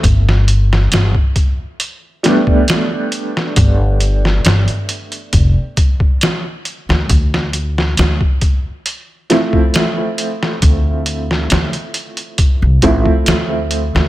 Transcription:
<<
  \new Staff \with { instrumentName = "Felt piano" } { \time 4/4 \key d \dorian \tempo 4 = 68 r2 r8 <g a b d'>4.~ | <g a b d'>2~ <g a b d'>8 r4. | r2 r8 <f a c' e'>4.~ | <f a c' e'>2~ <f a c' e'>8 <f a c' e'>4. | }
  \new Staff \with { instrumentName = "Upright bass" } { \clef bass \time 4/4 \key d \dorian g,,4 g,,16 r2 r8. | g,,4 g,,16 r8. f,,16 r4. d,16 | d,4 d,16 r2 r8. | d,4 d,16 r4 c,16 a,,16 r16 d,8. d,16 | }
  \new DrumStaff \with { instrumentName = "Drums" } \drummode { \time 4/4 <hh bd>16 sn16 hh16 sn16 <hh sn>16 bd16 <hh bd>8 hh8 <hh sn>16 bd16 <hh sn>8 hh16 sn16 | <hh bd>8 hh16 sn16 <hh sn>16 hh16 hh16 hh16 <hh bd>8 <hh bd>16 bd16 <hh sn>8 hh16 sn16 | <hh bd>16 sn16 hh16 sn16 <hh sn>16 bd16 <hh bd>8 hh8 <hh sn>16 bd16 <hh sn>8 hh16 sn16 | <hh bd>8 hh16 sn16 <hh sn>16 hh16 hh16 hh16 <hh bd>8 <hh bd>16 bd16 <hh sn>8 hh16 sn16 | }
>>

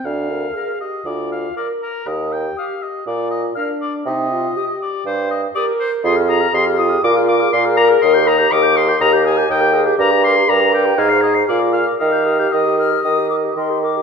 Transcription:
<<
  \new Staff \with { instrumentName = "Flute" } { \time 4/4 \key ees \major \tempo 4 = 120 r4 f'''8. r4 r16 f'''8. r16 | r4 ees'''8. r4 r16 f'''8. r16 | r4 ees'''8. r4 r16 ees'''8. r16 | ees'''16 f'''16 ees'''16 f'''16 ees'''16 f'''16 ees'''16 f'''16 d'''16 f'''16 d'''16 f'''16 d'''16 f'''16 d'''16 f'''16 |
ees'''16 g'''16 ees'''16 g'''16 ees'''16 g'''16 ees'''16 g'''16 ees'''16 g'''16 ees'''16 g'''16 ees'''16 g'''16 ees'''16 g'''16 | d'''16 bes''16 d'''16 bes''16 d'''16 bes''16 d'''16 bes''16 aes'''16 c''''16 aes'''16 c''''16 f'''16 d'''16 f'''16 d'''16 | ees'''16 g'''16 ees'''16 g'''16 ees'''8 f'''8 ees'''8 d'''8 c'''8 d'''8 | }
  \new Staff \with { instrumentName = "Oboe" } { \time 4/4 \key ees \major f''4. ees''8 d''8 f''8 d''8 bes'8 | ees''8 g''8 f''8 ees''8 d''8 ees''8 f''8 d''8 | ees''4. d''8 c''8 ees''8 d''8 c''8 | c'''8 bes''8 c'''8 ees'''8 d'''8 d'''8 c'''8 bes''8 |
c'''8 bes''8 d'''8 c'''8 bes''8 aes''8 g''8 r8 | bes''8 c'''8 bes''8 g''8 f''8 ees''8 d''8 f''8 | f''4 ees''2~ ees''8 r8 | }
  \new Staff \with { instrumentName = "Clarinet" } { \time 4/4 \key ees \major r4 bes'8. r4 r16 bes'8. r16 | r4 g'8. r4 r16 bes'8. r16 | r4 g'8. r4 r16 g'8. r16 | f'16 aes'16 f'16 aes'16 f'16 aes'16 f'16 aes'16 bes'16 aes'16 bes'16 aes'16 bes'16 aes'16 bes'16 aes'16 |
bes'16 g'16 bes'16 g'16 bes'16 g'16 bes'16 g'16 bes'16 g'16 bes'16 g'16 bes'16 g'16 bes'16 g'16 | bes'16 g'16 bes'16 g'16 bes'16 g'16 bes'16 g'16 ees''16 c''16 ees''16 c''16 aes'16 bes'16 aes'16 bes'16 | bes'16 g'16 bes'16 g'16 bes'16 g'16 bes'16 g'16 bes'16 g'16 bes'16 g'16 bes'16 g'16 bes'16 g'16 | }
  \new Staff \with { instrumentName = "French horn" } { \time 4/4 \key ees \major d'8 bes'8 aes'8 g'8 f'4 bes'4 | g'2 f'4 d'4 | ees'8 f'8 g'4. r8 bes'4 | aes'4 g'4 f'4 bes'4~ |
bes'4 g'4 g'4 bes'8 aes'8 | g'4 bes'4 aes'4 f'8 r8 | g'2.~ g'8 r8 | }
  \new Staff \with { instrumentName = "Bassoon" } { \clef bass \time 4/4 \key ees \major d,4 r4 d,4 r4 | ees,4 r4 bes,4 r4 | c4 r4 g,4 r4 | f,4 f,4 bes,4 bes,4 |
ees,4 ees,4 ees,4 ees,4 | g,4 g,4 aes,4 bes,4 | ees4 ees4 ees4 ees4 | }
>>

